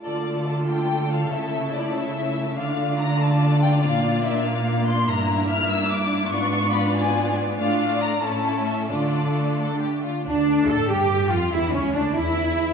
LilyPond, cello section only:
\new Staff \with { instrumentName = "Cello section" } { \clef bass \time 6/8 \key d \minor \tempo 4. = 95 d2. | cis2. | d2. | bes,2. |
g,2. | gis,2. | a,4. a,4. | d2~ d8 r8 |
d'4 a'8 g'4 f'8 | e'8 cis'8 d'8 e'4. | }